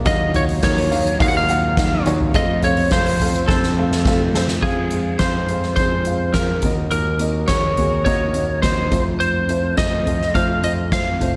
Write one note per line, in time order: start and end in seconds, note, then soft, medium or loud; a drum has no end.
0.05 0.59 D#2 loud
0.05 0.87 D#3 medium
0.05 0.61 D#3 medium
0.05 2.32 D#3 medium
0.05 2.32 F#3 loud
0.05 0.62 F#3 medium
0.05 2.32 A#3 medium
0.05 0.62 A#3 medium
0.05 0.29 D#4 medium
0.05 0.63 D#4 medium
0.05 4.59 F4 medium
0.05 0.64 F4 loud
0.05 0.29 F#4 medium
0.05 0.36 D#5 medium
0.05 0.29 F5 loud
0.05 kick loud
0.05 hi-hat pedal medium
0.05 open hi-hat medium
0.33 0.57 D#4 medium
0.33 0.58 F#4 medium
0.33 0.43 C#5 medium
0.33 0.58 F5 medium
0.33 floor tom medium
0.33 hi-hat pedal medium
0.33 open hi-hat medium
0.49 open hi-hat medium
0.62 1.16 D#2 loud
0.62 0.91 D#3 medium
0.62 0.92 F#3 medium
0.62 0.92 A#3 loud
0.62 0.86 D#4 medium
0.62 0.92 D#4 medium
0.62 0.90 F4 loud
0.62 0.87 F#4 medium
0.62 0.87 A#4 medium
0.62 1.17 C#5 medium
0.62 kick loud
0.62 snare loud
0.62 hi-hat pedal medium
0.62 open hi-hat loud
0.78 hi-hat pedal medium
0.78 open hi-hat soft
0.91 1.20 A#3 medium
0.91 1.15 D#4 medium
0.91 1.20 D#4 medium
0.91 1.20 F4 medium
0.91 1.15 F#4 medium
0.91 1.15 F5 medium
0.91 hi-hat pedal medium
0.91 open hi-hat medium
1.06 hi-hat pedal medium
1.19 2.02 D#2 medium
1.19 1.49 F#3 medium
1.19 1.49 A#3 medium
1.19 1.43 D#4 medium
1.19 1.49 D#4 medium
1.19 1.47 F4 medium
1.19 1.44 F#4 medium
1.19 1.44 F5 loud
1.19 1.28 F5 loud
1.19 kick loud
1.19 hi-hat pedal medium
1.19 open hi-hat medium
1.28 1.35 F#5 medium
1.37 2.03 F5 loud
1.48 1.77 A#3 medium
1.48 1.72 D#4 medium
1.48 1.77 D#4 medium
1.48 1.77 F4 medium
1.48 1.73 F#4 medium
1.48 1.73 F#5 medium
1.48 hi-hat pedal medium
1.48 open hi-hat medium
1.77 2.34 D#3 medium
1.77 2.34 F#3 medium
1.77 2.35 A#3 medium
1.77 2.01 D#4 medium
1.77 2.35 D#4 medium
1.77 2.35 F4 medium
1.77 2.01 F#4 medium
1.77 2.02 F5 medium
1.77 kick loud
1.77 snare loud
1.77 hi-hat pedal medium
1.77 open hi-hat medium
2.05 2.33 D#2 loud
2.05 2.29 D#4 medium
2.05 2.30 F#4 medium
2.05 2.30 C#5 loud
2.05 hi-hat pedal medium
2.05 open hi-hat medium
2.21 floor tom medium
2.34 2.90 F2 medium
2.34 2.88 F2 medium
2.34 2.90 C3 medium
2.34 2.91 F3 medium
2.34 2.91 A3 loud
2.34 4.61 A3 medium
2.34 2.58 C4 medium
2.34 4.61 C4 medium
2.34 2.92 C4 medium
2.34 2.92 F4 medium
2.34 2.58 A4 medium
2.34 2.62 D#5 loud
2.34 2.58 F5 loud
2.34 kick loud
2.34 hi-hat pedal medium
2.34 open hi-hat medium
2.62 2.86 C4 medium
2.62 2.86 A4 medium
2.62 2.92 C#5 loud
2.62 2.87 F5 medium
2.62 floor tom medium
2.62 hi-hat pedal medium
2.62 open hi-hat medium
2.77 open hi-hat medium
2.91 3.20 F2 medium
2.91 3.45 F2 loud
2.91 3.20 C3 medium
2.91 3.20 F3 loud
2.91 3.20 A3 medium
2.91 3.15 C4 medium
2.91 3.19 C4 loud
2.91 3.18 F4 loud
2.91 3.15 A4 medium
2.91 3.51 C5 medium
2.91 3.16 F5 medium
2.91 kick loud
2.91 snare loud
2.91 hi-hat pedal medium
2.91 open hi-hat medium
3.06 hi-hat pedal medium
3.06 open hi-hat soft
3.19 3.47 F3 medium
3.19 3.47 A3 medium
3.19 3.48 C4 medium
3.19 3.44 C4 medium
3.19 3.48 F4 medium
3.19 3.44 A4 medium
3.19 3.45 F5 medium
3.19 floor tom medium
3.19 hi-hat pedal medium
3.19 open hi-hat medium
3.34 hi-hat pedal medium
3.48 4.59 F2 medium
3.48 3.77 F3 medium
3.48 3.76 A3 medium
3.48 3.73 C4 medium
3.48 3.76 C4 medium
3.48 3.75 F4 medium
3.48 4.30 A4 medium
3.48 3.73 A4 medium
3.48 3.73 C5 loud
3.48 kick loud
3.48 snare medium
3.63 snare medium
3.76 4.04 F3 medium
3.76 4.05 A3 medium
3.76 4.05 C4 medium
3.76 4.01 C4 medium
3.76 4.05 F4 medium
3.76 4.01 A4 medium
3.76 4.02 F5 medium
3.92 snare medium
4.05 4.63 F2 medium
4.05 4.63 C3 medium
4.05 5.13 F3 medium
4.05 4.63 A3 medium
4.05 5.13 C4 medium
4.05 4.30 C4 medium
4.05 5.13 F4 medium
4.05 4.30 A4 medium
4.05 4.30 F5 medium
4.05 kick loud
4.05 snare medium
4.34 4.58 C4 medium
4.34 4.58 A4 medium
4.34 4.59 C5 medium
4.34 snare loud
4.48 snare medium
4.62 5.16 F2 medium
4.62 6.61 G#3 medium
4.62 4.86 C4 medium
4.62 6.61 C4 medium
4.62 6.61 F4 medium
4.62 5.22 G#4 medium
4.62 4.87 G#4 medium
4.62 4.87 F5 medium
4.62 kick medium
4.62 crash medium
4.91 5.15 C4 medium
4.91 5.16 G#4 medium
4.91 5.16 F5 medium
4.91 closed hi-hat medium
5.19 5.74 F2 medium
5.19 5.44 C4 medium
5.19 5.44 G#4 medium
5.19 5.75 C5 medium
5.19 5.45 F5 medium
5.19 kick medium
5.19 snare medium
5.19 closed hi-hat medium
5.49 5.73 C4 medium
5.49 5.73 G#4 medium
5.49 5.73 F5 medium
5.49 closed hi-hat medium
5.63 snare soft
5.76 6.59 F2 medium
5.76 6.01 C4 medium
5.76 6.01 G#4 medium
5.76 6.36 C5 medium
5.76 6.02 C5 medium
5.76 kick medium
5.76 closed hi-hat medium
6.05 6.30 C4 medium
6.05 6.30 G#4 medium
6.05 6.30 F5 medium
6.05 closed hi-hat medium
6.34 6.58 C4 medium
6.34 6.59 G#4 medium
6.34 6.74 A#4 medium
6.34 6.59 F5 medium
6.34 kick loud
6.34 snare loud
6.34 closed hi-hat medium
6.61 6.90 D#2 medium
6.61 8.89 D#3 medium
6.61 7.45 D#3 medium
6.61 7.11 A#3 medium
6.61 8.89 D#4 medium
6.61 8.89 F#4 medium
6.61 7.11 F#4 medium
6.61 8.89 A#4 medium
6.61 7.11 D#5 medium
6.61 kick medium
6.61 closed hi-hat medium
6.91 7.45 D#2 medium
6.91 7.51 A#4 medium
6.91 closed hi-hat medium
7.19 7.44 A#3 medium
7.19 7.44 F#4 medium
7.19 7.44 D#5 medium
7.19 closed hi-hat medium
7.48 8.02 D#2 medium
7.48 7.73 A#3 medium
7.48 7.73 F#4 medium
7.48 7.73 G#4 medium
7.48 8.04 C#5 medium
7.48 kick medium
7.48 snare medium
7.48 closed hi-hat medium
7.77 8.01 A#3 medium
7.77 8.02 F#4 medium
7.77 8.02 G#4 medium
7.77 closed hi-hat medium
7.77 floor tom medium
8.05 8.88 D#2 medium
8.05 8.30 A#3 medium
8.05 8.30 F#4 medium
8.05 8.62 C#5 medium
8.05 8.30 D#5 medium
8.05 kick medium
8.05 closed hi-hat medium
8.34 8.58 A#3 medium
8.34 8.59 F#4 medium
8.34 8.59 D#5 medium
8.34 closed hi-hat medium
8.62 8.87 A#3 medium
8.62 8.87 F#4 medium
8.62 9.03 C5 medium
8.62 8.88 D#5 medium
8.62 kick medium
8.62 snare loud
8.62 closed hi-hat medium
8.90 9.74 F2 medium
8.90 9.38 A3 medium
8.90 11.36 A3 medium
8.90 11.36 C4 medium
8.90 11.36 F4 medium
8.90 9.39 F4 medium
8.90 9.39 C5 medium
8.90 kick medium
8.90 closed hi-hat medium
8.90 floor tom medium
9.20 9.77 C5 medium
9.20 closed hi-hat medium
9.49 9.73 A3 medium
9.49 9.73 F4 medium
9.49 9.73 C5 medium
9.49 closed hi-hat medium
9.77 10.31 F2 medium
9.77 10.01 A3 medium
9.77 10.01 F4 medium
9.77 10.01 C5 medium
9.77 10.37 D#5 medium
9.77 kick loud
9.77 snare medium
9.77 closed hi-hat medium
10.06 10.30 A3 medium
10.06 10.30 F4 medium
10.06 10.30 C5 medium
10.06 closed hi-hat medium
10.06 floor tom medium
10.21 snare soft
10.34 11.17 F2 medium
10.34 10.58 A3 medium
10.34 10.59 F4 medium
10.34 10.59 C5 loud
10.34 10.64 F5 medium
10.34 kick loud
10.34 closed hi-hat medium
10.62 10.87 A3 medium
10.62 10.87 F4 medium
10.62 10.87 C5 medium
10.62 10.72 D#5 medium
10.62 closed hi-hat medium
10.91 11.15 A3 medium
10.91 11.16 F4 medium
10.91 11.16 C5 medium
10.91 11.32 F5 loud
10.91 kick loud
10.91 snare loud
10.91 closed hi-hat medium
11.20 11.36 F#1 medium
11.20 11.36 A3 medium
11.20 11.36 F4 medium
11.20 11.36 C5 medium
11.20 closed hi-hat medium
11.20 floor tom medium